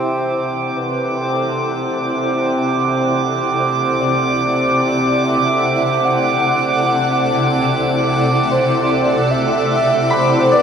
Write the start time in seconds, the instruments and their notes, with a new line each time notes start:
Already playing: ambient pad C3 E4 A4 D5 F#5, harmonium C3 C4, soft synth lead E5, synth texture D6
0.38 soft synth lead C5
0.76 soft synth lead B4
1.20 soft synth lead A4
1.99 soft synth lead C5
3.59 soft synth lead C5
4.00 soft synth lead D5
5.24 soft synth lead E5
6.05 soft synth lead F#5
8.47 soft synth lead C5, synth texture D6
8.70 ambient pad E4
8.90 soft synth lead D5
9.31 soft synth lead E5
10.10 soft synth lead C5, harp B5
10.52 soft synth lead B4, harp D5